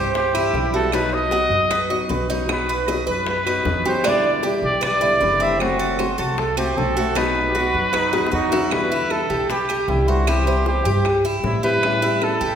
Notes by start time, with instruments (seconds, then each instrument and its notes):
Already playing: upright bass G2, nylon-string guitar E3 G3 C4 E4, trumpet G4, cuban tres C5
0.15 trumpet G4, muted nylon-string guitar stroke, high bongo
0.34 nylon-string guitar E3 G3 C4 E4, cuban tres E4, high bongo, claves
0.53 upright bass B1, nylon-string guitar E3 G3 C4 E4, high bongo, low bongo
0.73 nylon-string guitar E3 G3 C4 E4, cuban tres F#4, trumpet A4
0.92 nylon-string guitar B2 F#3 B3 D#4 F#4, cuban tres D#4, trumpet B4, high bongo, claves
1.12 trumpet D#5, high bongo
1.30 nylon-string guitar F#3 B3 D#4 F#4, cuban tres F#4, high bongo
1.50 upright bass F#2, high bongo
1.70 cuban tres B4, muted nylon-string guitar stroke, high bongo, claves
1.90 nylon-string guitar F#3 B3 D#4 F#4, cuban tres D#5, high bongo
2.09 upright bass B1, nylon-string guitar F#3 B3 D#4 F#4, cuban tres B4, high bongo, low bongo
2.29 nylon-string guitar F#3 B3 D#4 F#4, cuban tres D#4
2.48 nylon-string guitar B2 F#3 B3 D#4 F#4, high bongo, claves
2.52 trumpet B4
2.69 cuban tres B4, high bongo
2.88 nylon-string guitar F#3 B3 D#4 F#4, cuban tres D#5, high bongo, claves
3.07 upright bass F#2, cuban tres B4, trumpet B4, high bongo
3.27 trumpet B4, muted nylon-string guitar stroke, high bongo
3.46 nylon-string guitar F#3 B3 D#4 F#4, cuban tres D#4, high bongo, claves
3.65 upright bass E2, nylon-string guitar F#3 B3 D#4 F#4, high bongo, low bongo
3.85 nylon-string guitar F#3 B3 D#4 F#4, cuban tres G4, trumpet C5
4.04 nylon-string guitar B2 D3 G3 B3 E4, cuban tres D4, high bongo, claves
4.08 trumpet D5
4.24 high bongo
4.43 nylon-string guitar D3 G3 B3 E4, cuban tres G4, high bongo
4.62 upright bass B1, trumpet D5, high bongo
4.81 cuban tres B4, trumpet D5, muted nylon-string guitar stroke, high bongo, claves
5.01 nylon-string guitar D3 G3 B3 E4, cuban tres D5, high bongo
5.20 upright bass F#1, nylon-string guitar D3 G3 B3 E4, cuban tres B4, high bongo, low bongo
5.40 nylon-string guitar D3 G3 B3 E4, cuban tres C4, trumpet E5
5.59 nylon-string guitar F#3 A3 C4 F#4, trumpet F#4, high bongo, claves
5.79 cuban tres A4, high bongo
5.98 nylon-string guitar F#3 A3 C4 F#4, cuban tres C5, high bongo, claves
6.18 upright bass C2, trumpet F#4, cuban tres A4, high bongo
6.38 trumpet A4, muted nylon-string guitar stroke, high bongo
6.56 nylon-string guitar A3 C4 F#4, cuban tres C4, trumpet G4, high bongo, claves
6.76 upright bass B1, nylon-string guitar F#3 A3 C4 F#4, trumpet A4, high bongo, low bongo
6.96 nylon-string guitar A3 C4 F#4, cuban tres F#4
7.15 nylon-string guitar B2 F#3 B3 D#4 F#4, cuban tres D#4, trumpet B4, high bongo, claves
7.35 high bongo
7.48 trumpet G4
7.54 nylon-string guitar F#3 B3 D#4 F#4, cuban tres F#4, trumpet F#4, high bongo
7.74 upright bass F#2, high bongo
7.93 trumpet D#4, cuban tres B4, muted nylon-string guitar stroke, high bongo, claves
8.12 nylon-string guitar F#3 B3 D#4 F#4, cuban tres D#5, high bongo
8.26 high bongo
8.31 upright bass E2, nylon-string guitar F#3 B3 D#4 F#4, trumpet D#4 F#4, cuban tres B4
8.51 nylon-string guitar F#3 B3 D#4 F#4, cuban tres E4, low bongo
8.70 nylon-string guitar B2 D3 G3 B3 E4, trumpet B4, high bongo, claves
8.90 nylon-string guitar D3 G3 B3 E4, cuban tres E4, high bongo
9.10 nylon-string guitar D3 G3 B3 E4, trumpet A4, high bongo, claves
9.30 upright bass B1, cuban tres G4, high bongo
9.49 trumpet G4, cuban tres B4, muted nylon-string guitar stroke, high bongo
9.69 cuban tres G4, high bongo, claves
9.88 upright bass C2, nylon-string guitar D3 G3 B3 E4, trumpet E4, high bongo, low bongo
10.07 nylon-string guitar D3 G3 B3 E4, trumpet F#4, cuban tres C5
10.27 nylon-string guitar C3 E3 G3 C4 E4, cuban tres E4, trumpet G4, high bongo, claves
10.46 nylon-string guitar E3 G3 C4 E4, cuban tres C5, high bongo
10.66 nylon-string guitar E3 G3 E4, trumpet G4, high bongo
10.85 upright bass G2, cuban tres G4, high bongo
11.05 muted nylon-string guitar stroke, high bongo, claves
11.24 cuban tres E4, high bongo
11.43 upright bass A2, nylon-string guitar E3 G3 C4 E4, trumpet E4, high bongo, low bongo
11.63 nylon-string guitar E3 G3 C4 E4, cuban tres G4, trumpet B4
11.83 nylon-string guitar E3 G3 C#4 E4, high bongo, claves
12.02 nylon-string guitar G3 C#4 E4, cuban tres E4, high bongo
12.21 nylon-string guitar E3 G3 C#4 E4, trumpet A4, high bongo, claves
12.40 upright bass E2, cuban tres G4, high bongo